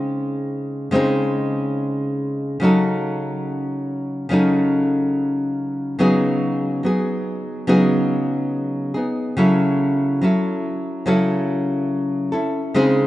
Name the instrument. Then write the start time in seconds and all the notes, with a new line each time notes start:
nylon-string guitar
Already playing: C#3 G#3 C4 D#4 G#4
0.91 C#3 G#3 C4 D#4
0.96 G#4
2.60 C#3 F#3 C#4 D#4
2.64 A4
4.29 C#3 F#3 C#4 D#4
4.34 A4
5.99 C#3 F#3 B3 D#4 G#4
6.83 F#3 B3 D#4 G#4
7.67 C#3 F#3 B3 D#4 G#4
8.94 B3 D#4 G#4
9.37 C#3 F#3 C#4 E4 A4
10.21 F#3 C#4 E4 A4
11.06 C#3 F#3 C#4 E4 A4
12.32 C#4 E4 A4
12.74 C#3 G#3 C4 D#4 G#4